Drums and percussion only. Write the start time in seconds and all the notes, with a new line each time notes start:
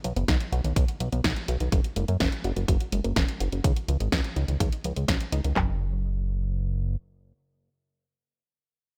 0.04 closed hi-hat
0.16 closed hi-hat
0.28 kick, snare, closed hi-hat
0.40 closed hi-hat
0.52 closed hi-hat
0.64 closed hi-hat
0.76 kick, closed hi-hat
0.88 closed hi-hat
1.00 closed hi-hat
1.12 closed hi-hat
1.24 kick, snare, closed hi-hat
1.36 closed hi-hat
1.48 closed hi-hat
1.60 closed hi-hat
1.72 kick, closed hi-hat
1.84 closed hi-hat
1.96 closed hi-hat
2.08 closed hi-hat
2.20 kick, snare, closed hi-hat
2.32 closed hi-hat
2.44 closed hi-hat
2.56 closed hi-hat
2.68 kick, closed hi-hat
2.80 closed hi-hat
2.92 closed hi-hat
3.04 closed hi-hat
3.16 kick, snare, closed hi-hat
3.28 closed hi-hat
3.40 closed hi-hat
3.52 closed hi-hat
3.64 kick, closed hi-hat
3.76 closed hi-hat
3.88 closed hi-hat
4.00 closed hi-hat
4.12 kick, snare, closed hi-hat
4.24 closed hi-hat
4.36 closed hi-hat
4.48 closed hi-hat
4.60 kick, closed hi-hat
4.72 closed hi-hat
4.84 closed hi-hat
4.96 closed hi-hat
5.08 kick, snare, closed hi-hat
5.20 closed hi-hat
5.32 closed hi-hat
5.44 closed hi-hat
5.56 kick, clap, floor tom